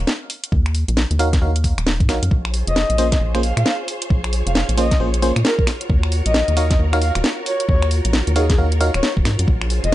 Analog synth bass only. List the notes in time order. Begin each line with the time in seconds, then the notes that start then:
0.52 D#2
0.88 A#1
1.11 D#2
1.42 D#2
1.78 D#1
2.00 G#2
2.09 A#1
2.23 F#2
2.31 A#1
2.67 F1
2.90 A#1
3.21 A#1
3.57 A#2
4.10 A#1
4.47 F1
4.69 A#1
5.00 A#1
5.36 A#2
5.90 D#2
6.26 A#1
6.48 D#2
6.79 D#2
7.15 D#1
7.69 D#2
8.05 A#1
8.27 D#2
8.58 D#2
8.94 D#1
9.17 D#1
9.25 G#2
9.39 F#2
9.48 A#1
9.84 F1